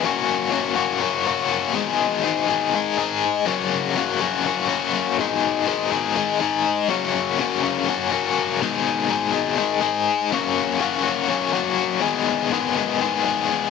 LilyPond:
\new Staff \with { instrumentName = "Overdriven electric guitar" } { \time 7/8 \key fis \mixolydian \tempo 4 = 123 <fis ais cis' fis'>4 <fis ais cis' fis'>8 <ais cis' fis'>8 <fis ais cis' fis'>8 <ais cis' fis'>4 | <b, dis gis dis' gis'>4 <b, dis gis dis' gis'>8 <gis dis' gis'>8 <dis gis dis' gis'>8 <gis dis' gis'>4 | <fis, cis fis ais cis' fis'>4 <fis, cis fis ais cis' fis'>8 <fis ais cis' fis'>8 <fis ais cis' fis'>8 <fis ais cis' fis'>4 | <b, dis gis dis' gis'>4 <b, dis gis dis' gis'>8 <gis dis' gis'>8 <dis gis dis' gis'>8 <gis dis' gis'>4 |
<fis, cis fis ais cis' fis'>4 <fis, cis fis ais cis' fis'>8 <fis ais cis' fis'>8 <fis ais cis' fis'>8 <fis ais cis' fis'>4 | <b, dis gis dis' gis'>4 <b, dis gis dis' gis'>8 <gis dis' gis'>8 <dis gis dis' gis'>8 <gis dis' gis'>4 | <fis, cis fis ais cis' fis'>4 <fis, cis fis ais cis' fis'>8 <fis ais cis' fis'>8 <fis ais cis' fis'>8 <fis ais cis' fis'>4 | <b, dis gis b gis'>4 <b, dis gis b gis'>8 <gis b gis'>8 <dis gis b gis'>8 <gis b gis'>4 | }